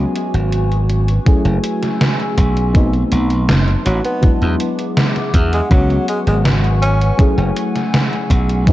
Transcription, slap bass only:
0.34 G#1
1.26 muted slap bass stroke
1.45 F#1
2.38 B1
3.12 B1
3.49 F#1
3.86 A1
4.23 muted slap bass stroke
4.42 E2
5.34 E2
5.71 C#2
6.27 G#1
7.19 muted slap bass stroke
7.38 F#1
8.30 B1

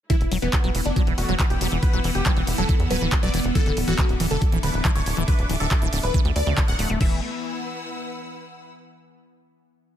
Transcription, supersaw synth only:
0.10 E4
0.42 B3
0.85 D4
1.18 F#4
1.50 G4
1.83 B4
2.15 G4
2.58 A4
2.91 B4
3.23 D5
3.55 A4
3.88 F#4
4.31 A4
4.63 B4
4.95 C#5
5.28 B4
5.60 A4
6.03 B4
6.36 D5
6.68 F#5
7.01 E5

